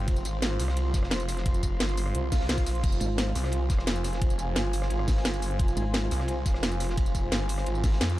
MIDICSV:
0, 0, Header, 1, 6, 480
1, 0, Start_track
1, 0, Key_signature, -4, "minor"
1, 0, Tempo, 344828
1, 109, Time_signature, 4, 2, 24, 8
1, 11406, End_track
2, 0, Start_track
2, 0, Title_t, "Analog synth pad"
2, 0, Program_c, 0, 89
2, 0, Note_on_c, 0, 65, 82
2, 0, Note_on_c, 0, 72, 80
2, 109, Note_on_c, 0, 84, 92
2, 3934, Note_off_c, 0, 84, 0
2, 3948, Note_on_c, 0, 80, 94
2, 11406, Note_off_c, 0, 65, 0
2, 11406, Note_off_c, 0, 72, 0
2, 11406, Note_off_c, 0, 80, 0
2, 11406, End_track
3, 0, Start_track
3, 0, Title_t, "Wobble bass"
3, 0, Program_c, 1, 39
3, 4189, Note_on_c, 1, 32, 96
3, 4649, Note_off_c, 1, 32, 0
3, 8028, Note_on_c, 1, 32, 99
3, 8489, Note_off_c, 1, 32, 0
3, 11406, End_track
4, 0, Start_track
4, 0, Title_t, "Detuned saw bass"
4, 0, Program_c, 2, 39
4, 108, Note_on_c, 2, 29, 99
4, 329, Note_off_c, 2, 29, 0
4, 348, Note_on_c, 2, 32, 99
4, 809, Note_off_c, 2, 32, 0
4, 828, Note_on_c, 2, 36, 101
4, 1289, Note_off_c, 2, 36, 0
4, 1309, Note_on_c, 2, 29, 99
4, 2489, Note_off_c, 2, 29, 0
4, 2509, Note_on_c, 2, 31, 98
4, 2970, Note_off_c, 2, 31, 0
4, 2989, Note_on_c, 2, 36, 100
4, 3657, Note_off_c, 2, 36, 0
4, 3657, Note_on_c, 2, 35, 100
4, 3929, Note_off_c, 2, 35, 0
4, 3948, Note_on_c, 2, 29, 100
4, 4169, Note_off_c, 2, 29, 0
4, 4669, Note_on_c, 2, 36, 100
4, 5130, Note_off_c, 2, 36, 0
4, 5148, Note_on_c, 2, 29, 99
4, 6329, Note_off_c, 2, 29, 0
4, 6348, Note_on_c, 2, 31, 99
4, 6809, Note_off_c, 2, 31, 0
4, 6828, Note_on_c, 2, 32, 99
4, 7289, Note_off_c, 2, 32, 0
4, 7308, Note_on_c, 2, 31, 95
4, 7769, Note_off_c, 2, 31, 0
4, 7788, Note_on_c, 2, 29, 100
4, 8009, Note_off_c, 2, 29, 0
4, 8509, Note_on_c, 2, 36, 101
4, 8969, Note_off_c, 2, 36, 0
4, 8989, Note_on_c, 2, 29, 93
4, 10170, Note_off_c, 2, 29, 0
4, 10189, Note_on_c, 2, 31, 97
4, 10650, Note_off_c, 2, 31, 0
4, 10669, Note_on_c, 2, 32, 96
4, 11130, Note_off_c, 2, 32, 0
4, 11149, Note_on_c, 2, 41, 98
4, 11406, Note_off_c, 2, 41, 0
4, 11406, End_track
5, 0, Start_track
5, 0, Title_t, "Swell"
5, 0, Program_c, 3, 103
5, 2988, Note_on_c, 3, 60, 62
5, 3949, Note_off_c, 3, 60, 0
5, 11406, End_track
6, 0, Start_track
6, 0, Title_t, "Drums"
6, 107, Note_on_c, 9, 51, 82
6, 108, Note_on_c, 9, 42, 98
6, 109, Note_on_c, 9, 36, 113
6, 228, Note_off_c, 9, 42, 0
6, 228, Note_on_c, 9, 42, 38
6, 228, Note_on_c, 9, 54, 29
6, 246, Note_off_c, 9, 51, 0
6, 248, Note_off_c, 9, 36, 0
6, 349, Note_off_c, 9, 42, 0
6, 349, Note_off_c, 9, 54, 0
6, 349, Note_on_c, 9, 42, 71
6, 349, Note_on_c, 9, 54, 66
6, 356, Note_on_c, 9, 51, 77
6, 488, Note_off_c, 9, 42, 0
6, 488, Note_off_c, 9, 54, 0
6, 496, Note_off_c, 9, 51, 0
6, 588, Note_on_c, 9, 51, 91
6, 589, Note_on_c, 9, 38, 112
6, 589, Note_on_c, 9, 42, 97
6, 597, Note_off_c, 9, 38, 0
6, 597, Note_on_c, 9, 38, 112
6, 727, Note_off_c, 9, 51, 0
6, 728, Note_off_c, 9, 42, 0
6, 736, Note_off_c, 9, 38, 0
6, 824, Note_on_c, 9, 38, 48
6, 824, Note_on_c, 9, 51, 71
6, 829, Note_on_c, 9, 46, 79
6, 829, Note_on_c, 9, 54, 64
6, 949, Note_on_c, 9, 37, 47
6, 956, Note_off_c, 9, 38, 0
6, 956, Note_on_c, 9, 38, 48
6, 963, Note_off_c, 9, 51, 0
6, 968, Note_off_c, 9, 46, 0
6, 968, Note_off_c, 9, 54, 0
6, 1067, Note_on_c, 9, 51, 93
6, 1068, Note_on_c, 9, 42, 96
6, 1088, Note_off_c, 9, 37, 0
6, 1095, Note_off_c, 9, 38, 0
6, 1207, Note_off_c, 9, 51, 0
6, 1208, Note_off_c, 9, 42, 0
6, 1306, Note_on_c, 9, 51, 69
6, 1307, Note_on_c, 9, 38, 50
6, 1308, Note_on_c, 9, 36, 102
6, 1309, Note_on_c, 9, 42, 70
6, 1309, Note_on_c, 9, 54, 64
6, 1429, Note_on_c, 9, 37, 45
6, 1439, Note_off_c, 9, 38, 0
6, 1439, Note_on_c, 9, 38, 47
6, 1445, Note_off_c, 9, 51, 0
6, 1448, Note_off_c, 9, 36, 0
6, 1448, Note_off_c, 9, 42, 0
6, 1448, Note_off_c, 9, 54, 0
6, 1540, Note_off_c, 9, 38, 0
6, 1540, Note_on_c, 9, 38, 115
6, 1546, Note_on_c, 9, 51, 94
6, 1549, Note_off_c, 9, 38, 0
6, 1549, Note_on_c, 9, 38, 113
6, 1549, Note_on_c, 9, 42, 96
6, 1568, Note_off_c, 9, 37, 0
6, 1669, Note_off_c, 9, 42, 0
6, 1669, Note_on_c, 9, 42, 37
6, 1669, Note_on_c, 9, 54, 29
6, 1685, Note_off_c, 9, 51, 0
6, 1688, Note_off_c, 9, 38, 0
6, 1779, Note_on_c, 9, 38, 48
6, 1789, Note_off_c, 9, 54, 0
6, 1789, Note_on_c, 9, 37, 33
6, 1789, Note_on_c, 9, 46, 77
6, 1789, Note_on_c, 9, 54, 65
6, 1793, Note_on_c, 9, 51, 70
6, 1808, Note_off_c, 9, 42, 0
6, 1909, Note_off_c, 9, 38, 0
6, 1909, Note_on_c, 9, 38, 61
6, 1928, Note_off_c, 9, 37, 0
6, 1928, Note_off_c, 9, 46, 0
6, 1928, Note_off_c, 9, 54, 0
6, 1932, Note_off_c, 9, 51, 0
6, 2028, Note_on_c, 9, 42, 99
6, 2029, Note_on_c, 9, 36, 116
6, 2036, Note_on_c, 9, 51, 87
6, 2049, Note_off_c, 9, 38, 0
6, 2149, Note_off_c, 9, 42, 0
6, 2149, Note_on_c, 9, 42, 39
6, 2149, Note_on_c, 9, 54, 28
6, 2168, Note_off_c, 9, 36, 0
6, 2176, Note_off_c, 9, 51, 0
6, 2268, Note_off_c, 9, 42, 0
6, 2268, Note_off_c, 9, 54, 0
6, 2268, Note_on_c, 9, 42, 72
6, 2268, Note_on_c, 9, 54, 64
6, 2269, Note_on_c, 9, 36, 61
6, 2277, Note_on_c, 9, 51, 66
6, 2407, Note_off_c, 9, 42, 0
6, 2407, Note_off_c, 9, 54, 0
6, 2408, Note_off_c, 9, 36, 0
6, 2417, Note_off_c, 9, 51, 0
6, 2509, Note_on_c, 9, 38, 117
6, 2509, Note_on_c, 9, 42, 96
6, 2510, Note_on_c, 9, 51, 86
6, 2518, Note_off_c, 9, 38, 0
6, 2518, Note_on_c, 9, 38, 122
6, 2629, Note_on_c, 9, 54, 29
6, 2648, Note_off_c, 9, 42, 0
6, 2649, Note_off_c, 9, 51, 0
6, 2657, Note_off_c, 9, 38, 0
6, 2748, Note_off_c, 9, 54, 0
6, 2748, Note_on_c, 9, 46, 77
6, 2748, Note_on_c, 9, 54, 62
6, 2751, Note_on_c, 9, 51, 65
6, 2868, Note_on_c, 9, 37, 49
6, 2888, Note_off_c, 9, 46, 0
6, 2888, Note_off_c, 9, 54, 0
6, 2890, Note_off_c, 9, 51, 0
6, 2989, Note_on_c, 9, 42, 99
6, 3008, Note_off_c, 9, 37, 0
6, 3128, Note_off_c, 9, 42, 0
6, 3229, Note_on_c, 9, 36, 100
6, 3229, Note_on_c, 9, 38, 35
6, 3229, Note_on_c, 9, 42, 68
6, 3229, Note_on_c, 9, 54, 61
6, 3230, Note_on_c, 9, 46, 90
6, 3349, Note_off_c, 9, 38, 0
6, 3349, Note_on_c, 9, 38, 54
6, 3368, Note_off_c, 9, 36, 0
6, 3368, Note_off_c, 9, 42, 0
6, 3368, Note_off_c, 9, 54, 0
6, 3369, Note_off_c, 9, 46, 0
6, 3468, Note_off_c, 9, 38, 0
6, 3468, Note_on_c, 9, 38, 111
6, 3468, Note_on_c, 9, 42, 96
6, 3476, Note_off_c, 9, 38, 0
6, 3476, Note_on_c, 9, 38, 113
6, 3476, Note_on_c, 9, 51, 75
6, 3589, Note_off_c, 9, 42, 0
6, 3589, Note_on_c, 9, 36, 60
6, 3589, Note_on_c, 9, 42, 39
6, 3589, Note_on_c, 9, 54, 29
6, 3615, Note_off_c, 9, 38, 0
6, 3616, Note_off_c, 9, 51, 0
6, 3707, Note_on_c, 9, 51, 60
6, 3709, Note_off_c, 9, 54, 0
6, 3709, Note_on_c, 9, 46, 74
6, 3709, Note_on_c, 9, 54, 64
6, 3715, Note_on_c, 9, 38, 47
6, 3728, Note_off_c, 9, 36, 0
6, 3728, Note_off_c, 9, 42, 0
6, 3829, Note_on_c, 9, 42, 39
6, 3846, Note_off_c, 9, 51, 0
6, 3848, Note_off_c, 9, 46, 0
6, 3848, Note_off_c, 9, 54, 0
6, 3854, Note_off_c, 9, 38, 0
6, 3945, Note_on_c, 9, 51, 87
6, 3949, Note_off_c, 9, 42, 0
6, 3949, Note_on_c, 9, 36, 117
6, 3949, Note_on_c, 9, 42, 97
6, 3949, Note_on_c, 9, 49, 78
6, 4069, Note_off_c, 9, 42, 0
6, 4069, Note_on_c, 9, 42, 40
6, 4069, Note_on_c, 9, 54, 28
6, 4084, Note_off_c, 9, 51, 0
6, 4088, Note_off_c, 9, 36, 0
6, 4088, Note_off_c, 9, 49, 0
6, 4177, Note_on_c, 9, 51, 78
6, 4189, Note_off_c, 9, 42, 0
6, 4189, Note_off_c, 9, 54, 0
6, 4189, Note_on_c, 9, 42, 73
6, 4189, Note_on_c, 9, 54, 61
6, 4317, Note_off_c, 9, 51, 0
6, 4328, Note_off_c, 9, 42, 0
6, 4328, Note_off_c, 9, 54, 0
6, 4427, Note_on_c, 9, 38, 119
6, 4429, Note_off_c, 9, 38, 0
6, 4429, Note_on_c, 9, 38, 119
6, 4429, Note_on_c, 9, 42, 97
6, 4439, Note_on_c, 9, 51, 87
6, 4568, Note_off_c, 9, 38, 0
6, 4568, Note_off_c, 9, 42, 0
6, 4578, Note_off_c, 9, 51, 0
6, 4661, Note_on_c, 9, 38, 49
6, 4669, Note_on_c, 9, 46, 77
6, 4669, Note_on_c, 9, 54, 61
6, 4674, Note_on_c, 9, 51, 76
6, 4789, Note_on_c, 9, 37, 51
6, 4792, Note_off_c, 9, 38, 0
6, 4792, Note_on_c, 9, 38, 48
6, 4808, Note_off_c, 9, 46, 0
6, 4808, Note_off_c, 9, 54, 0
6, 4813, Note_off_c, 9, 51, 0
6, 4895, Note_on_c, 9, 51, 89
6, 4909, Note_on_c, 9, 42, 100
6, 4928, Note_off_c, 9, 37, 0
6, 4931, Note_off_c, 9, 38, 0
6, 5034, Note_off_c, 9, 51, 0
6, 5048, Note_off_c, 9, 42, 0
6, 5143, Note_on_c, 9, 51, 66
6, 5148, Note_on_c, 9, 36, 107
6, 5149, Note_on_c, 9, 42, 68
6, 5149, Note_on_c, 9, 54, 59
6, 5151, Note_on_c, 9, 38, 52
6, 5269, Note_on_c, 9, 37, 51
6, 5274, Note_off_c, 9, 38, 0
6, 5274, Note_on_c, 9, 38, 50
6, 5282, Note_off_c, 9, 51, 0
6, 5288, Note_off_c, 9, 36, 0
6, 5288, Note_off_c, 9, 42, 0
6, 5288, Note_off_c, 9, 54, 0
6, 5389, Note_off_c, 9, 38, 0
6, 5389, Note_on_c, 9, 38, 117
6, 5389, Note_on_c, 9, 42, 97
6, 5393, Note_on_c, 9, 51, 96
6, 5396, Note_off_c, 9, 38, 0
6, 5396, Note_on_c, 9, 38, 126
6, 5408, Note_off_c, 9, 37, 0
6, 5509, Note_off_c, 9, 42, 0
6, 5509, Note_on_c, 9, 42, 38
6, 5509, Note_on_c, 9, 54, 27
6, 5532, Note_off_c, 9, 51, 0
6, 5535, Note_off_c, 9, 38, 0
6, 5629, Note_off_c, 9, 54, 0
6, 5629, Note_on_c, 9, 37, 35
6, 5629, Note_on_c, 9, 38, 50
6, 5629, Note_on_c, 9, 46, 76
6, 5629, Note_on_c, 9, 54, 60
6, 5630, Note_on_c, 9, 51, 74
6, 5648, Note_off_c, 9, 42, 0
6, 5748, Note_off_c, 9, 38, 0
6, 5748, Note_on_c, 9, 38, 61
6, 5749, Note_on_c, 9, 42, 39
6, 5768, Note_off_c, 9, 37, 0
6, 5768, Note_off_c, 9, 46, 0
6, 5768, Note_off_c, 9, 54, 0
6, 5769, Note_off_c, 9, 51, 0
6, 5866, Note_on_c, 9, 51, 97
6, 5868, Note_on_c, 9, 36, 126
6, 5869, Note_off_c, 9, 42, 0
6, 5869, Note_on_c, 9, 42, 96
6, 5887, Note_off_c, 9, 38, 0
6, 5989, Note_off_c, 9, 42, 0
6, 5989, Note_on_c, 9, 42, 38
6, 5989, Note_on_c, 9, 54, 27
6, 6006, Note_off_c, 9, 51, 0
6, 6008, Note_off_c, 9, 36, 0
6, 6108, Note_off_c, 9, 42, 0
6, 6108, Note_off_c, 9, 54, 0
6, 6108, Note_on_c, 9, 42, 67
6, 6108, Note_on_c, 9, 54, 59
6, 6113, Note_on_c, 9, 51, 75
6, 6248, Note_off_c, 9, 42, 0
6, 6248, Note_off_c, 9, 54, 0
6, 6252, Note_off_c, 9, 51, 0
6, 6342, Note_on_c, 9, 38, 112
6, 6348, Note_off_c, 9, 38, 0
6, 6348, Note_on_c, 9, 38, 121
6, 6348, Note_on_c, 9, 42, 94
6, 6349, Note_on_c, 9, 51, 80
6, 6488, Note_off_c, 9, 38, 0
6, 6488, Note_off_c, 9, 42, 0
6, 6488, Note_off_c, 9, 51, 0
6, 6588, Note_on_c, 9, 46, 81
6, 6588, Note_on_c, 9, 54, 60
6, 6595, Note_on_c, 9, 51, 62
6, 6708, Note_on_c, 9, 38, 50
6, 6709, Note_on_c, 9, 37, 50
6, 6728, Note_off_c, 9, 46, 0
6, 6728, Note_off_c, 9, 54, 0
6, 6734, Note_off_c, 9, 51, 0
6, 6821, Note_on_c, 9, 51, 85
6, 6829, Note_on_c, 9, 42, 97
6, 6847, Note_off_c, 9, 38, 0
6, 6848, Note_off_c, 9, 37, 0
6, 6949, Note_on_c, 9, 37, 51
6, 6960, Note_off_c, 9, 51, 0
6, 6968, Note_off_c, 9, 42, 0
6, 7068, Note_on_c, 9, 36, 108
6, 7069, Note_on_c, 9, 38, 38
6, 7069, Note_on_c, 9, 42, 67
6, 7069, Note_on_c, 9, 54, 58
6, 7070, Note_on_c, 9, 46, 80
6, 7088, Note_off_c, 9, 37, 0
6, 7191, Note_off_c, 9, 38, 0
6, 7191, Note_on_c, 9, 38, 55
6, 7208, Note_off_c, 9, 36, 0
6, 7208, Note_off_c, 9, 42, 0
6, 7208, Note_off_c, 9, 54, 0
6, 7209, Note_off_c, 9, 46, 0
6, 7309, Note_off_c, 9, 38, 0
6, 7309, Note_on_c, 9, 38, 122
6, 7309, Note_on_c, 9, 42, 90
6, 7313, Note_off_c, 9, 38, 0
6, 7313, Note_on_c, 9, 38, 122
6, 7313, Note_on_c, 9, 51, 94
6, 7429, Note_off_c, 9, 42, 0
6, 7429, Note_on_c, 9, 42, 38
6, 7429, Note_on_c, 9, 54, 28
6, 7452, Note_off_c, 9, 38, 0
6, 7453, Note_off_c, 9, 51, 0
6, 7549, Note_off_c, 9, 54, 0
6, 7549, Note_on_c, 9, 46, 80
6, 7549, Note_on_c, 9, 54, 59
6, 7550, Note_on_c, 9, 51, 65
6, 7568, Note_off_c, 9, 42, 0
6, 7669, Note_on_c, 9, 42, 38
6, 7688, Note_off_c, 9, 46, 0
6, 7688, Note_off_c, 9, 54, 0
6, 7689, Note_off_c, 9, 51, 0
6, 7783, Note_on_c, 9, 51, 90
6, 7788, Note_on_c, 9, 36, 125
6, 7789, Note_off_c, 9, 42, 0
6, 7789, Note_on_c, 9, 42, 90
6, 7909, Note_off_c, 9, 42, 0
6, 7909, Note_on_c, 9, 42, 37
6, 7909, Note_on_c, 9, 54, 27
6, 7922, Note_off_c, 9, 51, 0
6, 7928, Note_off_c, 9, 36, 0
6, 8029, Note_off_c, 9, 42, 0
6, 8029, Note_off_c, 9, 54, 0
6, 8029, Note_on_c, 9, 42, 67
6, 8029, Note_on_c, 9, 54, 57
6, 8034, Note_on_c, 9, 51, 76
6, 8168, Note_off_c, 9, 42, 0
6, 8168, Note_off_c, 9, 54, 0
6, 8173, Note_off_c, 9, 51, 0
6, 8265, Note_on_c, 9, 51, 92
6, 8266, Note_on_c, 9, 38, 118
6, 8269, Note_off_c, 9, 38, 0
6, 8269, Note_on_c, 9, 38, 126
6, 8269, Note_on_c, 9, 42, 90
6, 8404, Note_off_c, 9, 51, 0
6, 8408, Note_off_c, 9, 38, 0
6, 8408, Note_off_c, 9, 42, 0
6, 8498, Note_on_c, 9, 38, 51
6, 8509, Note_on_c, 9, 46, 82
6, 8509, Note_on_c, 9, 54, 58
6, 8516, Note_on_c, 9, 51, 70
6, 8627, Note_off_c, 9, 38, 0
6, 8627, Note_on_c, 9, 38, 46
6, 8629, Note_on_c, 9, 37, 48
6, 8648, Note_off_c, 9, 46, 0
6, 8648, Note_off_c, 9, 54, 0
6, 8655, Note_off_c, 9, 51, 0
6, 8740, Note_on_c, 9, 51, 98
6, 8749, Note_on_c, 9, 42, 92
6, 8766, Note_off_c, 9, 38, 0
6, 8768, Note_off_c, 9, 37, 0
6, 8880, Note_off_c, 9, 51, 0
6, 8888, Note_off_c, 9, 42, 0
6, 8986, Note_on_c, 9, 51, 72
6, 8989, Note_on_c, 9, 36, 110
6, 8989, Note_on_c, 9, 42, 65
6, 8989, Note_on_c, 9, 54, 56
6, 8991, Note_on_c, 9, 38, 51
6, 9109, Note_off_c, 9, 38, 0
6, 9109, Note_on_c, 9, 37, 47
6, 9109, Note_on_c, 9, 38, 49
6, 9126, Note_off_c, 9, 51, 0
6, 9128, Note_off_c, 9, 36, 0
6, 9128, Note_off_c, 9, 42, 0
6, 9128, Note_off_c, 9, 54, 0
6, 9226, Note_on_c, 9, 51, 84
6, 9229, Note_off_c, 9, 38, 0
6, 9229, Note_on_c, 9, 38, 126
6, 9229, Note_on_c, 9, 42, 89
6, 9236, Note_off_c, 9, 38, 0
6, 9236, Note_on_c, 9, 38, 114
6, 9248, Note_off_c, 9, 37, 0
6, 9349, Note_off_c, 9, 42, 0
6, 9349, Note_on_c, 9, 42, 37
6, 9349, Note_on_c, 9, 54, 27
6, 9365, Note_off_c, 9, 51, 0
6, 9376, Note_off_c, 9, 38, 0
6, 9462, Note_on_c, 9, 38, 55
6, 9469, Note_off_c, 9, 54, 0
6, 9469, Note_on_c, 9, 37, 35
6, 9469, Note_on_c, 9, 46, 84
6, 9469, Note_on_c, 9, 51, 78
6, 9469, Note_on_c, 9, 54, 58
6, 9488, Note_off_c, 9, 42, 0
6, 9595, Note_off_c, 9, 38, 0
6, 9595, Note_on_c, 9, 38, 59
6, 9608, Note_off_c, 9, 51, 0
6, 9609, Note_off_c, 9, 37, 0
6, 9609, Note_off_c, 9, 46, 0
6, 9609, Note_off_c, 9, 54, 0
6, 9709, Note_on_c, 9, 36, 121
6, 9709, Note_on_c, 9, 42, 92
6, 9712, Note_on_c, 9, 51, 95
6, 9734, Note_off_c, 9, 38, 0
6, 9829, Note_off_c, 9, 42, 0
6, 9829, Note_on_c, 9, 42, 37
6, 9829, Note_on_c, 9, 54, 28
6, 9848, Note_off_c, 9, 36, 0
6, 9851, Note_off_c, 9, 51, 0
6, 9949, Note_off_c, 9, 42, 0
6, 9949, Note_off_c, 9, 54, 0
6, 9949, Note_on_c, 9, 36, 65
6, 9949, Note_on_c, 9, 42, 65
6, 9949, Note_on_c, 9, 54, 59
6, 9959, Note_on_c, 9, 51, 70
6, 10088, Note_off_c, 9, 36, 0
6, 10088, Note_off_c, 9, 42, 0
6, 10088, Note_off_c, 9, 54, 0
6, 10098, Note_off_c, 9, 51, 0
6, 10184, Note_on_c, 9, 51, 96
6, 10187, Note_on_c, 9, 38, 107
6, 10189, Note_off_c, 9, 38, 0
6, 10189, Note_on_c, 9, 38, 121
6, 10189, Note_on_c, 9, 42, 89
6, 10323, Note_off_c, 9, 51, 0
6, 10328, Note_off_c, 9, 38, 0
6, 10328, Note_off_c, 9, 42, 0
6, 10424, Note_on_c, 9, 51, 71
6, 10429, Note_on_c, 9, 46, 86
6, 10429, Note_on_c, 9, 54, 60
6, 10541, Note_on_c, 9, 38, 46
6, 10549, Note_on_c, 9, 37, 48
6, 10563, Note_off_c, 9, 51, 0
6, 10568, Note_off_c, 9, 46, 0
6, 10568, Note_off_c, 9, 54, 0
6, 10669, Note_on_c, 9, 42, 91
6, 10671, Note_on_c, 9, 51, 87
6, 10680, Note_off_c, 9, 38, 0
6, 10688, Note_off_c, 9, 37, 0
6, 10789, Note_on_c, 9, 54, 27
6, 10808, Note_off_c, 9, 42, 0
6, 10811, Note_off_c, 9, 51, 0
6, 10909, Note_off_c, 9, 54, 0
6, 10909, Note_on_c, 9, 36, 110
6, 10909, Note_on_c, 9, 38, 37
6, 10909, Note_on_c, 9, 42, 62
6, 10909, Note_on_c, 9, 54, 56
6, 10916, Note_on_c, 9, 46, 76
6, 11027, Note_off_c, 9, 38, 0
6, 11027, Note_on_c, 9, 38, 52
6, 11048, Note_off_c, 9, 36, 0
6, 11048, Note_off_c, 9, 42, 0
6, 11048, Note_off_c, 9, 54, 0
6, 11056, Note_off_c, 9, 46, 0
6, 11149, Note_off_c, 9, 38, 0
6, 11149, Note_on_c, 9, 38, 120
6, 11149, Note_on_c, 9, 42, 84
6, 11150, Note_off_c, 9, 38, 0
6, 11150, Note_on_c, 9, 38, 111
6, 11151, Note_on_c, 9, 51, 87
6, 11269, Note_off_c, 9, 42, 0
6, 11269, Note_on_c, 9, 42, 35
6, 11269, Note_on_c, 9, 54, 28
6, 11289, Note_off_c, 9, 38, 0
6, 11290, Note_off_c, 9, 51, 0
6, 11406, Note_off_c, 9, 42, 0
6, 11406, Note_off_c, 9, 54, 0
6, 11406, End_track
0, 0, End_of_file